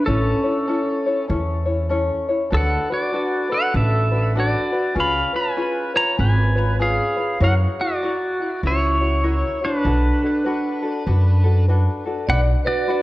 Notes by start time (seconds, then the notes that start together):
0.06 A1 C#4 E4 A4 C#5
0.43 C#4 E4 C#5
0.67 C#4 E4 A4 C#5
1.06 C#4 E4 C#5
1.28 E2 C#4 E4 A4 C#5
1.66 C#4 E4 C#5
1.89 C#4 E4 A4 C#5
2.29 C#4 E4 C#5
2.50 D2 D4 F#4 A4 B4
2.57 F#5
2.90 D4 F#4 B4 D5
3.12 D4 F#4 A4 B4
3.49 D4 F#4 A4 B4
3.54 F#5
3.73 A1 D4 F#4 A4 B4
3.77 E5
4.11 D4 F#4 B4
4.35 D4 F#4 A4 B4
4.40 D5
4.72 D4 F#4 B4
4.95 C#2 C#4 F4 G#4 B4
5.00 F5 B5
5.33 C#4 F4 B4 G#5
5.57 C#4 F4 G#4 B4
5.94 C#4 F4 B4 C#5 A#5
6.17 G#1 C#4 F4 G#4 B4 G#5
6.55 C#4 F4 B4
6.79 C#4 F4 G#4 B4 F5
7.16 C#4 F4 B4
7.41 F#2 E4 F#4 A#4 C#5 F#5
7.80 E4 F#4 D5
8.03 E4 F#4 A#4
8.40 E4 F#4
8.63 C#2 E4 F#4 A#4 C#5
9.01 E4 F#4 C#5
9.24 E4 F#4 A#4 C#5
9.61 E4 F#4 B4 C#5
9.66 D4
9.85 B1 D4 F#4 A4 B4
10.22 D4 F#4 A4
10.44 D4 F#4 A4 B4
10.82 D4 F#4 A4
11.06 F#2 D4 F#4 A4 B4
11.44 D4 F#4 A4
11.68 D4 F#4 A4 B4
12.05 D4 F#4 A4
12.27 B1 D4 F#4 B4 D5 F#5
12.31 B4
12.64 D4 F#4 B4 D5
12.88 D4 F#4 B4 D5